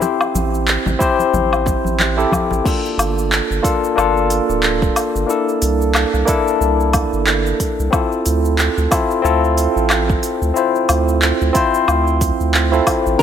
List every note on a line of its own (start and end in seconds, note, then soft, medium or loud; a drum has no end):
0.00 0.96 C4 medium
0.00 0.96 E4 medium
0.00 0.97 G4 medium
0.00 0.97 C5 medium
0.00 muted conga medium
0.00 shaker soft
0.21 low woodblock medium
0.21 shaker soft
0.35 0.78 A1 medium
0.35 muted conga medium
0.35 high conga medium
0.35 shaker medium
0.54 shaker soft
0.68 clap loud
0.68 shaker soft
0.86 0.96 A1 medium
0.86 muted conga medium
0.86 high conga medium
0.86 low conga medium
0.86 shaker soft
0.99 2.13 C4 loud
0.99 2.14 E4 medium
0.99 2.15 G4 medium
0.99 2.15 C5 loud
0.99 kick loud
0.99 shaker medium
1.19 muted conga medium
1.19 shaker soft
1.33 1.76 A1 medium
1.33 high conga medium
1.33 low conga medium
1.33 shaker soft
1.53 low woodblock medium
1.53 shaker soft
1.66 kick loud
1.66 muted conga medium
1.66 shaker medium
1.85 2.25 A1 medium
1.85 high conga medium
1.85 shaker soft
1.99 clap medium
1.99 muted conga medium
1.99 shaker soft
2.17 2.61 C4 medium
2.17 2.61 E4 medium
2.17 2.62 G4 medium
2.17 2.62 A4 loud
2.17 shaker soft
2.32 kick medium
2.32 high conga medium
2.32 low woodblock medium
2.32 shaker medium
2.51 2.61 A1 loud
2.51 muted conga medium
2.51 shaker soft
2.64 3.60 A#3 medium
2.64 3.60 D4 medium
2.64 3.61 F4 medium
2.64 3.62 A4 medium
2.64 kick loud
2.64 crash loud
2.64 shaker soft
2.85 shaker soft
2.98 3.41 G1 loud
2.98 open hi-hat medium
2.98 low woodblock medium
2.98 shaker medium
3.18 shaker soft
3.32 clap loud
3.32 shaker soft
3.50 3.60 G1 medium
3.50 shaker soft
3.62 3.93 A#3 medium
3.62 3.93 D4 medium
3.62 3.93 F4 medium
3.62 3.94 A4 loud
3.62 kick loud
3.62 open hi-hat medium
3.62 shaker medium
3.84 shaker soft
3.96 4.40 G1 medium
3.96 5.25 A#3 medium
3.96 5.25 D4 medium
3.96 5.26 F4 medium
3.96 5.27 A4 loud
3.96 low woodblock medium
3.96 shaker soft
4.17 shaker soft
4.30 open hi-hat medium
4.30 shaker medium
4.49 4.89 D1 loud
4.49 shaker soft
4.63 clap loud
4.63 shaker soft
4.82 kick loud
4.82 shaker soft
4.96 open hi-hat medium
4.96 low woodblock medium
4.96 shaker medium
5.15 5.25 G1 medium
5.15 shaker soft
5.27 6.23 A#3 medium
5.27 6.24 D4 medium
5.27 6.24 E4 medium
5.27 6.25 A4 medium
5.27 shaker soft
5.49 shaker soft
5.62 6.05 C2 loud
5.62 open hi-hat loud
5.62 shaker medium
5.81 shaker soft
5.95 clap loud
5.95 low woodblock medium
5.95 shaker soft
6.14 6.24 C2 medium
6.14 shaker soft
6.25 7.88 A#3 loud
6.25 7.89 D4 medium
6.25 7.89 E4 loud
6.25 7.90 A4 loud
6.25 kick loud
6.25 open hi-hat medium
6.25 shaker medium
6.48 shaker soft
6.61 7.04 C2 medium
6.61 shaker soft
6.80 shaker soft
6.93 kick loud
6.93 open hi-hat medium
6.93 low woodblock medium
6.93 shaker medium
7.13 7.53 G1 loud
7.13 shaker soft
7.27 clap medium
7.27 shaker soft
7.46 shaker soft
7.60 kick medium
7.60 open hi-hat medium
7.60 shaker medium
7.79 7.89 C2 medium
7.79 shaker soft
7.90 8.87 C4 medium
7.90 8.88 E4 medium
7.90 8.88 F4 medium
7.90 8.89 A4 medium
7.90 kick loud
7.90 low woodblock medium
7.90 shaker soft
8.12 shaker soft
8.26 8.69 D2 loud
8.26 open hi-hat medium
8.26 shaker medium
8.45 shaker soft
8.59 clap loud
8.59 shaker soft
8.77 8.87 D2 medium
8.77 shaker soft
8.91 9.21 C4 medium
8.91 9.21 E4 medium
8.91 9.21 F4 medium
8.91 9.22 A4 medium
8.91 kick loud
8.91 open hi-hat medium
8.91 low woodblock medium
8.91 shaker medium
9.11 shaker soft
9.22 9.67 D2 medium
9.22 10.52 C4 medium
9.22 10.52 E4 medium
9.22 10.53 F4 medium
9.22 10.54 A4 loud
9.22 shaker soft
9.44 shaker soft
9.58 open hi-hat medium
9.58 shaker medium
9.76 10.17 A1 loud
9.76 shaker soft
9.90 clap medium
9.90 low woodblock medium
9.90 shaker soft
10.10 kick loud
10.10 shaker soft
10.23 open hi-hat medium
10.23 shaker medium
10.41 10.52 D2 medium
10.41 shaker soft
10.54 11.51 C4 medium
10.54 11.52 E4 medium
10.54 11.52 F4 medium
10.54 shaker soft
10.58 11.53 C5 medium
10.75 shaker soft
10.89 11.32 D2 loud
10.89 open hi-hat medium
10.89 low woodblock medium
10.89 shaker medium
11.08 shaker soft
11.22 clap loud
11.22 shaker soft
11.41 11.51 D2 medium
11.41 shaker soft
11.53 12.68 C4 loud
11.53 12.69 E4 medium
11.53 12.69 F4 medium
11.53 12.70 C5 loud
11.53 kick loud
11.53 open hi-hat medium
11.53 shaker medium
11.74 shaker soft
11.88 12.31 D2 medium
11.88 low woodblock medium
11.88 shaker soft
12.07 shaker soft
12.21 kick loud
12.21 open hi-hat medium
12.21 shaker medium
12.40 12.81 D2 medium
12.40 shaker soft
12.54 clap medium
12.54 shaker soft
12.72 13.16 C4 medium
12.72 13.16 E4 medium
12.72 13.16 F4 medium
12.72 13.17 A4 medium
12.72 shaker soft
12.87 kick medium
12.87 open hi-hat medium
12.87 low woodblock medium
12.87 shaker medium
13.06 13.16 A1 loud
13.06 shaker soft
13.18 13.23 A#3 medium
13.18 13.23 D4 medium
13.18 13.23 A#4 medium